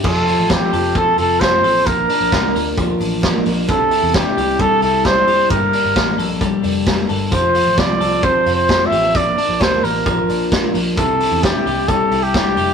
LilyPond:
<<
  \new Staff \with { instrumentName = "Trumpet" } { \time 4/4 \key f \major \tempo 4 = 132 a'4 g'4 a'8 a'8 c''4 | bes'2 r2 | a'4 g'4 a'8 a'8 c''4 | bes'2 r2 |
c''4 d''4 \tuplet 3/2 { c''4 c''8~ c''8 e''4 } | d''4 c''8 bes'4. r4 | a'4 g'4 a'8. g'4~ g'16 | }
  \new Staff \with { instrumentName = "Clean electric guitar" } { \time 4/4 \key f \major f8 f'8 c'8 a'8 c'8 f'8 c'8 a'8 | r8 d'8 bes8 bes'8 f8 d'8 bes8 bes'8 | c8 e'8 d'8 g'8 g8 e'8 d'8 g'8 | g,8 d'8 bes8 a'8 g8 d'8 bes8 a'8 |
f8 f'8 c'8 a'8 c'8 f'8 c'8 g'16 a'16 | r8 d'8 bes8 bes'8 f8 d'8 bes8 bes'8 | c8 e'8 d'8 g'8 g8 e'8 d'8 g'8 | }
  \new Staff \with { instrumentName = "Twelve-string acoustic guitar" } { \time 4/4 \key f \major <f c' f' a'>8 <c' f' a'>8 <f c' f' a'>8 <c' f' a'>8 <f c' f' a'>8 <c' f' a'>8 <f c' f' a'>8 <c' a'>8 | <bes, d f bes d' bes'>8 <f bes d' bes'>8 <bes, d f bes d' bes'>8 <f bes d' bes'>8 <f bes d' bes'>8 <f bes d' bes'>8 <bes, d f bes d' bes'>8 <f bes d' bes'>8 | <c g d' e' g'>8 <d' e' g'>8 <c g d' e' g'>8 <d' e' g'>8 <g d' e' g'>8 <d' e' g'>8 <c g d' e' g'>8 <d' e' g'>8 | <g, d g bes d' a'>8 <g bes d' a'>8 <g, d g bes d' a'>8 <g bes d' a'>8 <g bes d' a'>8 <g bes d' a'>8 <g, d g bes d' a'>8 <g bes d' a'>8 |
<f c' f' a'>8 <c' f' a'>8 <f c' f' a'>8 <c' f' a'>8 <f c' a'>8 <c' f' a'>8 <f c' f'>8 <c' f' a'>8 | <bes, d f bes d' bes'>8 <f bes d' bes'>8 <bes, d f bes d' bes'>8 <f bes d' bes'>8 <f bes d' bes'>8 <f bes d' bes'>8 <bes, d f bes d' bes'>8 <f bes d' bes'>8 | <c g d' e' g'>8 <d' e' g'>8 <c g d' e' g'>8 <d' e' g'>8 <g d' e' g'>8 <d' e' g'>8 <c g d' e' g'>8 <e' g'>8 | }
  \new Staff \with { instrumentName = "Picked electric bass" } { \clef bass \time 4/4 \key f \major f,,8. a,,8 r16 f,,8. r16 f,,4 a,,8 | bes,,8 r16 bes,,16 c,8 d,4 a,,4 bes,,8 | c,8. e,8 r16 c,8. r16 c,4 f,,8 | g,,8 r16 g,,16 a,,8 bes,,4 f,,4 g,,8 |
f,,8. a,,16 c,8 c,8. r16 f,,4 a,,8 | bes,,8 r16 bes,,16 d,8 a,,4 bes,,4 bes,,8 | c,8. e,8 r16 c,8. r16 c,4 f,,8 | }
  \new DrumStaff \with { instrumentName = "Drums" } \drummode { \time 4/4 <cymc bd>8 hho8 <hh bd sn>8 hho8 <hh bd>8 hho8 <hh bd sn>8 hho8 | <hh bd>8 hho8 <hh bd sn>8 hho8 <hh bd>8 hho8 <hh bd sn>8 hho8 | <hh bd>8 hho8 <hh bd sn>8 hho8 <hh bd>8 hho8 <hh bd sn>8 hho8 | <hh bd>8 hho8 <hh bd sn>8 hho8 <hh bd>8 hho8 <hh bd sn>8 hho8 |
<hh bd>8 hho8 <hh bd sn>8 hho8 <hh bd>8 hho8 <hh bd sn>8 hho8 | <hh bd>8 hho8 <hh bd sn>8 hho8 <hh bd>8 hho8 <hh bd sn>8 hho8 | <hh bd>8 hho8 <hh bd sn>8 hho8 <hh bd>8 hho8 <hh bd sn>8 hho8 | }
>>